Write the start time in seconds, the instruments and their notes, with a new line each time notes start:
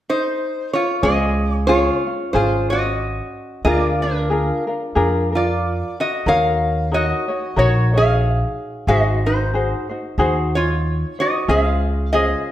0.09 resonator guitar played with a steel bar D#4 C5
0.73 resonator guitar played with a steel bar F4 C#5
1.03 upright bass C#2, ukulele C#4 F4 G#4 C5, resonator guitar played with a steel bar G#4 D#5
1.54 resonator guitar played with a steel bar C#5
1.67 ukulele C#4 F4 G#4, resonator guitar played with a steel bar F4 C#5
2.07 ukulele C#4 F4
2.33 upright bass G#1, ukulele C#4 F4 G#4 C5, resonator guitar played with a steel bar F4 C5
2.70 ukulele C#4 C5, resonator guitar played with a steel bar F#4 D#5
3.65 upright bass D2, ukulele D4 F4 G#4 A#4, resonator guitar played with a steel bar F4 D5
4.02 resonator guitar played with a steel bar D4 A#4
4.30 ukulele D4 F4 G#4 A#4
4.67 ukulele D4 F4 A#4
4.95 upright bass F2, ukulele D4 F4 G#4 A#4
5.32 resonator guitar played with a steel bar F4, ukulele A#4
5.37 resonator guitar played with a steel bar D5
6.00 resonator guitar played with a steel bar F#4 D#5
6.26 upright bass D#2, ukulele D#4 F#4 A#4 C#5, resonator guitar played with a steel bar A#4 F5
6.91 ukulele D#4 F#4 A#4 C#5, resonator guitar played with a steel bar F#4 D#5
7.28 ukulele D#4 F#4 C#5
7.56 upright bass A#1, ukulele D#4 F#4 A#4 C#5, resonator guitar played with a steel bar F#4 C#5
7.94 ukulele D#4 F#4 C#5, resonator guitar played with a steel bar G#4 F5
8.87 upright bass G#1, ukulele D#4 F#4 G#4 C5, resonator guitar played with a steel bar F#4 D#5
9.26 resonator guitar played with a steel bar D#4 C5
9.53 ukulele D#4 F#4 G#4 C5
9.89 ukulele D#4 F#4 C5
10.18 upright bass D#2, ukulele D#4 F#4 G#4 C5
10.55 ukulele D#4, resonator guitar played with a steel bar F4 C#5
11.19 ukulele D#4 F#4 C5, resonator guitar played with a steel bar F#4 D#5
11.48 upright bass C#2, ukulele C#4 F4 G#4 C5, resonator guitar played with a steel bar G#4 F5
12.13 ukulele C#4 F4 G#4 C5, resonator guitar played with a steel bar G#4 D#5